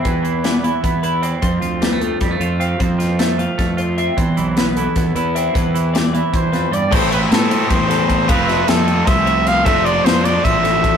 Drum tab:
CC |-------|-------|-------|-------|
RD |-------|-------|-------|-------|
HH |xxxxxxx|xxxxxxx|xxxxxxx|xxxxxxx|
SD |--o----|--o-o--|-oo-o--|--o-o--|
BD |o---o--|o---o--|o---o--|o---o--|

CC |-------|x------|-------|-------|
RD |-------|-xxxxxx|xxxxxxx|xxxxxxx|
HH |xxxxxxx|-------|-------|-------|
SD |--o--o-|--o--o-|-oo-o-o|--o--o-|
BD |o---o--|o---o-o|o---o--|o---o-o|